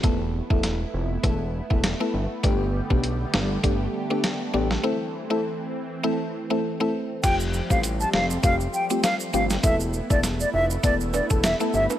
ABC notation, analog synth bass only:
X:1
M:4/4
L:1/16
Q:"Swing 16ths" 1/4=100
K:Flyd
V:1 name="Analog synth bass" clef=bass
E,,,3 E,,,3 F,,,2 E,,,3 E,,,2 z G,,, z | G,,,3 B,,,3 G,,,2 G,,,2 z4 A,,,2 | z16 | F,,,3 A,,,3 F,,,2 F,,,2 z4 G,,,2 |
E,,,3 E,,,3 F,,,2 E,,,3 E,,,2 z G,,, z |]